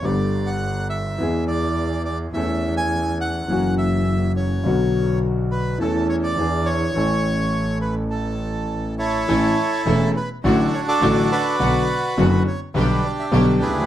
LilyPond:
<<
  \new Staff \with { instrumentName = "Bandoneon" } { \time 4/4 \key a \major \tempo 4 = 104 << { d''8. fis''8. e''4 d''4 d''8 | e''8. gis''8. fis''4 e''4 cis''8~ | cis''4 r8 b'8 a'8 cis''16 d''8. cis''8~ | cis''4. b'8 a'4. cis''8~ |
cis''4 r8 b'8 a'8 cis''16 d''8. d''8~ | d''4 r8 cis''8 b'8 d''16 e''16 cis''8 b'8 | } \\ { r1 | r1 | r1 | r2. r8 <e' a'>8~ |
<e' a'>4. r8 <d' fis'>8. <fis' a'>8. <fis' b'>8~ | <fis' b'>4. r8 <d' g'>4. <e' gis'>8 | } >> }
  \new Staff \with { instrumentName = "String section" } { \time 4/4 \key a \major r1 | r1 | r1 | r1 |
<a cis' e'>8 r8 <a cis' e'>8 r8 <a d' fis'>8 r8 <a d' fis'>8 r8 | <b d' fis'>8 r8 <b d' fis'>8 r8 <b d' g'>8 r8 <b d' g'>8 r8 | }
  \new Staff \with { instrumentName = "Grand piano" } { \clef bass \time 4/4 \key a \major <g,, g, d g b g'>2 <e, e gis b gis'>2 | <e, e a cis' a'>2 <fis, e fis ais cis' fis'>2 | <b,, b, d fis b fis'>2 <e, e a cis' a'>4 <e, e b d' gis'>4 | <a,, a, e a cis' a'>1 |
<a,, a, e a cis' a'>8 r8 <e,, e, e a cis' a'>8 r8 <a,, a, d fis a fis'>8 r8 <a,, a, d fis a fis'>8 r8 | <b,, b, d fis b fis'>8 r8 <fis,, fis, d fis b fis'>8 r8 <b,, b, d g b g'>8 r8 <b,, b, d g b g'>8 r32 cis,32 d,32 dis,32 | }
  \new Staff \with { instrumentName = "Double bass" } { \clef bass \time 4/4 \key a \major g,,2 e,2 | e,2 fis,,2 | b,,2 e,4 e,4 | a,,1 |
a,,8 r8 e,,8 r8 a,,8 r8 a,,8 r8 | b,,8 r8 fis,,8 r8 b,,8 r8 b,,8 d,8 | }
>>